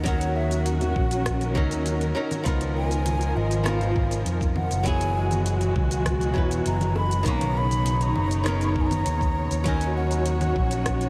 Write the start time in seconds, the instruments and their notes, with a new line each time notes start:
Already playing: fingered electric bass D#2
0.03 hollow-body jazz guitar D#3 F#3 C#4, string section D#3 C#4 F#4 A#4, flute F#5, kick, closed hi-hat, low conga, shaker
0.08 hollow-body jazz guitar A#4
0.21 closed hi-hat, shaker
0.36 flute E5
0.51 closed hi-hat, shaker
0.66 flute F#5, closed hi-hat, shaker
0.81 closed hi-hat, low conga, shaker
0.96 fingered electric bass A#1, kick
1.11 closed hi-hat, shaker
1.26 kick, cross-stick, closed hi-hat, shaker
1.41 closed hi-hat, shaker
1.55 fingered electric bass C#2, hollow-body jazz guitar F#3 C#4 D#4 A#4, kick, low conga
1.71 fingered electric bass D#2, closed hi-hat, shaker
1.86 closed hi-hat, shaker
2.01 closed hi-hat, shaker
2.15 hollow-body jazz guitar F#3 C#4 D#4 A#4
2.31 closed hi-hat, low conga, shaker
2.44 fingered electric bass C#2, string section B2 F3, hollow-body jazz guitar F3 B3 D#4, kick, closed hi-hat, shaker
2.48 hollow-body jazz guitar A#4
2.61 closed hi-hat, shaker
2.77 flute G#5
2.91 closed hi-hat, shaker
3.06 closed hi-hat, low conga, shaker
3.21 closed hi-hat, shaker
3.36 fingered electric bass G#1, flute D#5
3.51 closed hi-hat, shaker
3.64 hollow-body jazz guitar F3 B3 D#4, flute F5, cross-stick, closed hi-hat, shaker
3.68 hollow-body jazz guitar A#4
3.81 closed hi-hat, low conga, shaker
3.96 kick
4.11 closed hi-hat, shaker
4.26 fingered electric bass F2, closed hi-hat, shaker
4.41 kick, shaker
4.56 flute F#5, low conga
4.71 fingered electric bass F#1, closed hi-hat, shaker
4.83 string section E3 G#3 F#4, hollow-body jazz guitar F#3 B3 E4, flute G#5, kick, closed hi-hat, shaker
4.88 hollow-body jazz guitar G#4
5.01 closed hi-hat, shaker
5.31 closed hi-hat, low conga, shaker
5.46 closed hi-hat, shaker
5.61 closed hi-hat, shaker
5.76 fingered electric bass C#2, kick
5.91 closed hi-hat, shaker
6.06 kick, cross-stick, closed hi-hat, low conga, shaker
6.21 closed hi-hat, shaker
6.34 fingered electric bass E1, hollow-body jazz guitar F#3 B3 E4, kick
6.38 hollow-body jazz guitar B4
6.51 closed hi-hat, shaker
6.66 fingered electric bass F#1, flute A#5, closed hi-hat, shaker
6.81 closed hi-hat, low conga, shaker
6.96 flute B5, high bongo
7.11 closed hi-hat, shaker
7.23 fingered electric bass B1, string section C#3 D#4 C#5, hollow-body jazz guitar D#3 B3 C#4, kick, closed hi-hat, shaker
7.27 hollow-body jazz guitar A#3, flute A#5 C#6
7.41 closed hi-hat, low conga, shaker
7.57 flute B5
7.71 closed hi-hat, shaker
7.86 closed hi-hat, shaker
8.01 flute A#5, closed hi-hat, shaker
8.16 fingered electric bass F#1, low conga
8.31 closed hi-hat, shaker
8.44 hollow-body jazz guitar D#3 B3 C#4, flute A#5, cross-stick, closed hi-hat, shaker
8.48 hollow-body jazz guitar A#4
8.61 flute C#6, closed hi-hat, shaker
8.69 flute A#5
8.76 kick
8.81 flute G#5
8.86 flute A#5
8.91 closed hi-hat, low conga, shaker
9.06 fingered electric bass D#2, closed hi-hat, shaker
9.21 kick, shaker
9.51 fingered electric bass D#2, closed hi-hat, shaker
9.64 string section D#3 C#4 F#4, hollow-body jazz guitar F#3 C#4 D#4, flute G#5, kick, closed hi-hat, low conga, shaker
9.68 hollow-body jazz guitar A#4
9.81 closed hi-hat, shaker
9.97 flute F#5
10.11 closed hi-hat, shaker
10.26 closed hi-hat, shaker
10.41 closed hi-hat, low conga, shaker
10.56 fingered electric bass A#1, kick
10.71 closed hi-hat, shaker
10.86 kick, cross-stick, closed hi-hat, shaker
11.01 closed hi-hat, shaker